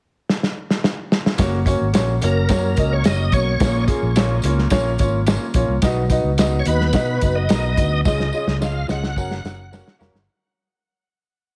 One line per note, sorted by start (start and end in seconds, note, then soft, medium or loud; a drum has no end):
0.29 snare medium
0.43 snare medium
0.70 snare medium
0.84 snare medium
1.12 snare medium
1.26 snare medium
1.38 1.75 F#1 medium
1.38 1.56 A#3 medium
1.38 1.57 C#4 medium
1.38 1.57 F#4 medium
1.38 1.57 C#5 loud
1.38 kick medium
1.38 snare loud
1.38 closed hi-hat medium
1.38 tambourine medium
1.65 1.84 A#3 medium
1.65 1.84 C#4 medium
1.65 1.85 F#4 medium
1.65 1.85 C#5 medium
1.65 kick medium
1.65 closed hi-hat medium
1.65 tambourine soft
1.81 1.93 G#1 medium
1.93 2.18 A#1 medium
1.93 2.12 A#3 medium
1.93 2.12 C#4 medium
1.93 2.12 F#4 medium
1.93 2.13 C#5 medium
1.93 snare loud
1.93 closed hi-hat medium
1.93 tambourine medium
2.21 2.46 F#1 medium
2.21 2.40 A#3 medium
2.21 2.40 C#4 medium
2.21 2.40 F#4 medium
2.21 2.94 A#4 medium
2.21 2.41 C#5 medium
2.21 closed hi-hat medium
2.21 tambourine soft
2.49 2.73 F#2 medium
2.49 2.67 A#3 medium
2.49 2.67 C#4 medium
2.49 2.68 F#4 medium
2.49 2.68 C#5 loud
2.49 kick medium
2.49 snare loud
2.49 closed hi-hat medium
2.49 tambourine medium
2.76 3.02 C#2 medium
2.76 2.95 A#3 medium
2.76 2.96 C#4 medium
2.76 2.96 F#4 medium
2.76 2.96 D#5 medium
2.76 kick medium
2.76 closed hi-hat medium
2.76 tambourine soft
2.93 3.06 C#5 medium
3.04 3.29 F#1 medium
3.04 3.23 A#3 medium
3.04 3.23 C#4 medium
3.04 3.24 F#4 medium
3.04 3.24 C#5 medium
3.04 3.34 D#5 medium
3.04 snare loud
3.04 closed hi-hat medium
3.04 tambourine medium
3.32 3.56 B1 medium
3.32 3.51 A#3 medium
3.32 3.51 C#4 medium
3.32 3.51 F#4 medium
3.32 3.84 C#5 loud
3.32 3.51 C#5 medium
3.32 kick medium
3.32 closed hi-hat medium
3.32 tambourine medium
3.60 3.85 A#1 medium
3.60 4.40 A#2 medium
3.60 3.78 A#3 medium
3.60 3.78 C#4 medium
3.60 3.79 F4 medium
3.60 3.79 C#5 medium
3.60 kick loud
3.60 snare loud
3.60 closed hi-hat medium
3.60 tambourine medium
3.86 4.05 A#3 medium
3.86 4.06 C#4 medium
3.86 4.06 F4 medium
3.86 4.06 G#4 medium
3.86 kick medium
3.86 closed hi-hat medium
3.86 tambourine soft
4.02 4.39 A#1 medium
4.16 4.34 A#3 medium
4.16 4.34 C#4 medium
4.16 4.34 F4 medium
4.16 4.34 C#5 medium
4.16 snare loud
4.16 closed hi-hat medium
4.16 tambourine medium
4.42 4.68 C#2 medium
4.42 4.62 A#3 medium
4.42 4.62 C#4 medium
4.42 4.62 F4 medium
4.42 4.63 C#5 medium
4.42 closed hi-hat medium
4.42 tambourine soft
4.59 snare soft
4.70 4.95 A#1 medium
4.70 4.89 A#3 loud
4.70 4.89 C#4 loud
4.70 4.90 F4 loud
4.70 4.90 C#5 loud
4.70 kick medium
4.70 snare loud
4.70 closed hi-hat medium
4.70 tambourine medium
4.98 5.36 G#1 medium
4.98 5.17 A#3 medium
4.98 5.17 C#4 medium
4.98 5.18 F4 medium
4.98 5.18 C#5 medium
4.98 kick medium
4.98 closed hi-hat medium
4.98 tambourine soft
5.27 5.45 A#3 medium
5.27 5.45 C#4 medium
5.27 5.46 F4 medium
5.27 5.46 C#5 medium
5.27 snare loud
5.27 closed hi-hat medium
5.27 tambourine medium
5.54 5.67 A#1 medium
5.54 5.73 A#3 medium
5.54 5.73 C#4 medium
5.54 5.73 F4 medium
5.54 5.73 C#5 medium
5.54 kick medium
5.54 closed hi-hat medium
5.54 tambourine medium
5.68 5.80 C2 medium
5.82 6.19 B1 loud
5.82 6.63 B2 medium
5.82 6.01 B3 loud
5.82 6.01 D#4 medium
5.82 6.01 F#4 medium
5.82 6.02 D#5 loud
5.82 kick loud
5.82 snare loud
5.82 closed hi-hat medium
5.82 tambourine medium
6.10 6.29 B3 medium
6.10 6.29 D#4 medium
6.10 6.29 F#4 medium
6.10 6.29 D#5 medium
6.10 kick medium
6.10 closed hi-hat medium
6.10 tambourine medium
6.24 6.60 C#2 medium
6.38 6.56 B3 medium
6.38 6.57 D#4 medium
6.38 6.57 F#4 medium
6.38 6.58 D#5 medium
6.38 snare loud
6.38 closed hi-hat medium
6.38 tambourine medium
6.59 6.66 C#5 medium
6.65 6.90 D#2 medium
6.65 6.84 B3 medium
6.65 6.85 D#4 medium
6.65 6.85 F#4 medium
6.65 7.38 B4 medium
6.65 6.85 D#5 medium
6.65 closed hi-hat medium
6.65 tambourine medium
6.81 snare soft
6.93 7.18 B2 medium
6.93 7.12 B3 medium
6.93 7.12 D#4 medium
6.93 7.12 F#4 medium
6.93 7.12 D#5 loud
6.93 kick medium
6.93 snare loud
6.93 closed hi-hat medium
6.93 tambourine medium
7.21 7.46 F#1 medium
7.21 7.40 B3 medium
7.21 7.40 D#4 medium
7.21 7.40 F#4 medium
7.21 7.40 D#5 medium
7.21 kick medium
7.21 closed hi-hat medium
7.21 tambourine soft
7.35 8.01 D#5 loud
7.48 7.74 B1 medium
7.48 7.67 B3 medium
7.48 7.68 D#4 medium
7.48 7.68 F#4 medium
7.48 7.68 A#4 medium
7.48 snare loud
7.48 closed hi-hat medium
7.48 tambourine medium
7.77 8.02 D2 medium
7.77 7.96 B3 medium
7.77 7.96 D#4 medium
7.77 7.96 F#4 medium
7.77 7.96 D#5 medium
7.77 kick medium
7.77 closed hi-hat medium
7.77 tambourine medium
8.05 8.30 C#2 medium
8.05 8.85 C#3 medium
8.05 8.24 C#4 medium
8.05 8.24 F4 medium
8.05 8.24 G#4 medium
8.05 8.57 D#5 loud
8.05 8.24 D#5 medium
8.05 kick loud
8.05 snare medium
8.05 tambourine medium
8.20 snare soft
8.33 8.51 C#4 medium
8.33 8.52 F4 medium
8.33 8.52 G#4 medium
8.33 8.52 D#5 medium
8.33 tambourine soft
8.47 8.84 C#2 loud
8.47 snare medium
8.60 8.78 C#4 medium
8.60 8.79 F4 medium
8.60 8.79 G#4 medium
8.60 8.79 D#5 medium
8.60 8.87 F5 loud
8.60 snare medium
8.60 tambourine medium
8.88 9.13 C#2 medium
8.88 9.06 C#4 medium
8.88 9.06 F4 medium
8.88 9.07 G#4 medium
8.88 9.07 D#5 medium
8.88 9.96 F#5 medium
8.88 snare medium
8.88 tambourine soft
9.04 snare medium
9.16 9.41 F#1 medium
9.16 9.35 C#4 loud
9.16 9.35 F#4 medium
9.16 9.35 A#4 medium
9.16 9.35 F#5 loud
9.16 kick medium
9.16 tambourine medium
9.31 snare medium
9.44 9.81 F#1 medium
9.44 9.62 C#4 medium
9.44 9.63 F#4 medium
9.44 9.63 A#4 medium
9.44 9.63 F#5 medium
9.44 snare medium
9.44 tambourine soft
9.71 9.84 F#3 medium
9.71 9.84 A#3 medium
9.71 9.90 C#4 medium
9.71 9.84 C#4 medium
9.71 9.90 F#4 medium
9.71 9.90 A#4 medium
9.71 9.84 A#4 medium
9.71 9.91 F#5 medium
9.71 snare medium
9.71 tambourine medium
9.88 snare medium
9.99 10.12 F1 medium
9.99 10.23 F#3 medium
9.99 10.23 A#3 medium
9.99 10.18 C#4 medium
9.99 10.23 C#4 medium
9.99 10.18 F#4 medium
9.99 10.23 A#4 medium
9.99 10.18 A#4 medium
9.99 10.18 F#5 medium
9.99 snare loud
9.99 tambourine soft
10.14 10.26 G1 medium
10.14 snare medium